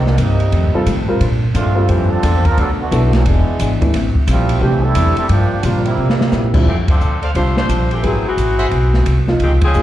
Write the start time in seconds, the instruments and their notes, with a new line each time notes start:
Already playing: upright bass C2
0.07 trombone section D#3 G3 A#3 D4, snare
0.17 upright bass G2, hollow-body jazz guitar C3 G3 A#3 D#4, trombone section G3 A#3 C4 D#4, kick, hi-hat pedal, ride
0.40 ride
0.51 hollow-body jazz guitar F2 D#3 A3 C4, upright bass F2, kick, ride
0.63 upright bass D#2
0.74 upright bass C2, grand piano G3 C4 F4 A4
0.86 hollow-body jazz guitar F2 D#3 A3 C4, upright bass A2, kick, hi-hat pedal, ride
1.08 grand piano G3 C4 F4 A#4
1.20 upright bass A#2, hollow-body jazz guitar A#3 D4 A4 C5, kick, ride
1.54 upright bass G2, trombone section A3 C4 D4 F4, hollow-body jazz guitar A#3 D4 A4 C5, kick, hi-hat pedal, ride
1.75 grand piano G3 C4 F4 A4
1.89 upright bass F2, trombone section E3 A3 C4 G4, hollow-body jazz guitar A#3 D4 A4 C5, kick, ride
2.10 trombone section F3 C4 D4 A4
2.23 upright bass E2, hollow-body jazz guitar A#3 D4 A4 C5, kick, hi-hat pedal, ride
2.45 trombone section F3 C4 D4 A#4, kick, ride
2.57 upright bass D2, hollow-body jazz guitar B2 A3 D4 F#4, trombone section F#3 B3 D4 A4, kick, ride
2.80 trombone section D3 A3 B3 F#4
2.91 upright bass B1, hollow-body jazz guitar B2 A3 D4 F#4, grand piano F#3 B3 E4 A4, kick, hi-hat pedal, ride
3.13 trombone section F#3 A3 C#4 E4, snare, ride
3.25 upright bass E1, hollow-body jazz guitar E3 B3 D4 G#4, trombone section G#3 B3 D4 E4, kick, ride
3.47 muted upright bass stroke
3.59 upright bass G#1, hollow-body jazz guitar E3 B3 D4 G#4, kick, hi-hat pedal, ride
3.81 grand piano E3 A3 D4 E4, kick, ride
3.93 upright bass A1, hollow-body jazz guitar A2 G3 C4 E4, snare, ride
4.15 kick
4.27 upright bass A#1, hollow-body jazz guitar A2 G3 C4 E4, trombone section G3 A3 C4 F4, hi-hat pedal, ride
4.49 ride
4.61 upright bass C2, hollow-body jazz guitar A2 G3 C4 E4, grand piano E3 A3 D4 G4, trombone section E3 A3 C4 G4, kick
4.84 trombone section G3 C4 E4 A4
4.95 upright bass E2, hollow-body jazz guitar A2 G3 C4 E4, kick, hi-hat pedal, ride
5.17 trombone section G3 C4 E4 A4, muted upright bass stroke, ride
5.29 hollow-body jazz guitar G2 F3 A#3 D4, upright bass G2, trombone section F3 A#3 D4 G4, kick, ride
5.63 hollow-body jazz guitar G2 F3 A#3 D4, upright bass A#2, grand piano D3 G3 C4 F4, trombone section G3 A#3 D4 F4, kick, hi-hat pedal, ride
5.85 trombone section G3 A#3 C4 E4, ride
5.97 hollow-body jazz guitar C3 G3 A#3 E4, upright bass C3
6.10 snare
6.21 snare
6.32 upright bass A#2, hollow-body jazz guitar C3 G3 A#3 E4, snare, hi-hat pedal
6.54 grand piano F2 D3 G3 C4 E4, kick, crash
6.66 upright bass F2, saxophone section E3 A3 C4 G4, kick
6.88 saxophone section F3 C4 D4 A4, kick, ride
7.01 upright bass D2, hi-hat pedal
7.22 trumpet section A4 C5 D5 F5, ride
7.35 upright bass C2, grand piano D3 G3 C4 F4, saxophone section A3 D4 F4 C5, kick, ride
7.57 saxophone section A3 D4 F4 C5, snare
7.69 upright bass A#1, kick, hi-hat pedal, ride
7.91 saxophone section E3 A3 C4 G4, ride
8.03 upright bass G#1, grand piano F#3 B3 E4 G#4, saxophone section F#3 C4 E4 G#4, kick, ride
8.28 saxophone section E3 B3 C4 F#4
8.37 upright bass A1, kick, hi-hat pedal, ride
8.59 trumpet section G#4 C5 E5 F#5, ride
8.71 upright bass B1, kick, ride
8.94 snare
9.06 upright bass C2, kick, hi-hat pedal, ride
9.28 grand piano F3 A#3 D#4 F4, snare
9.40 upright bass C#2, saxophone section D#3 G#3 C4, kick, ride
9.44 saxophone section G4
9.61 saxophone section F3 C4 C#4 G#4, kick, ride
9.74 upright bass D#2, grand piano F3 A#3 D#4 G#4, hi-hat pedal